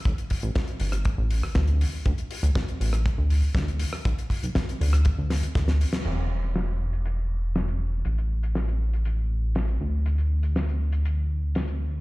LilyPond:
<<
  \new Staff \with { instrumentName = "Analog synth bass" } { \clef bass \time 4/4 \key d \mixolydian \tempo 4 = 120 a,,16 r8 a,,16 r8 g,,8 r16 a,,8 d,16 d,8 r8 | d,16 r8 d,16 r8 a,,8 d,16 d,8 d,16 d,8 r8 | b,,16 r8 b,,16 r8 d,8 r16 d,8 d,16 d,8 r8 | e,,1 |
a,,2.~ a,,8 d,8~ | d,1 | }
  \new DrumStaff \with { instrumentName = "Drums" } \drummode { \time 4/4 <hh bd>16 hh16 <hho bd>16 hh16 <hh bd sn>16 hh16 hho16 <hh ss>16 <hh bd>8 hho16 ss16 <hh bd sn>16 hh16 hho8 | <hh bd>16 hh16 hho16 hh16 <hh bd sn>16 hh16 hho16 <hh ss>16 <hh bd>8 hho8 <hh bd sn>16 hh16 hho16 ss16 | <hh bd>16 hh16 <hho bd>16 hh16 <hh bd sn>16 hh16 hho16 <hh ss>16 <hh bd>8 <hho sn>16 hh16 <hh bd sn>16 <hh sn>16 hho16 <hh sn>16 | <cymc hh>16 hh8 hh16 <hh sn>16 hh8 hh16 hh4 <hh sn>16 hh8. |
hh16 hh8 hh16 <hh sn>16 hh8 hh16 hh4 <hh sn>16 hh8. | hh16 hh8 hh16 <hh sn>16 hh8 hh16 hh4 <hh sn>16 hh8. | }
>>